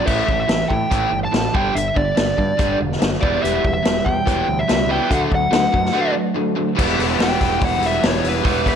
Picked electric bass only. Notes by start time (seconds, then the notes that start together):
0.07 A1
0.29 A1
0.49 A1
0.71 A2
0.92 A1
1.11 G1
1.33 A1
1.55 G1
1.75 G1
1.96 G1
2.17 G1
2.38 G2
2.59 G1
2.80 E1
3.02 F#1
3.23 E1
3.44 E1
3.64 E1
3.86 E1
4.06 E2
4.27 E1
4.48 D2
4.70 C#2
5.11 D2
5.31 D2
5.51 D2
5.74 F#2
6.79 E1
6.99 E1
7.19 E1
7.41 E1
7.62 E1
7.81 E1
8.04 E1
8.24 E1
8.45 E1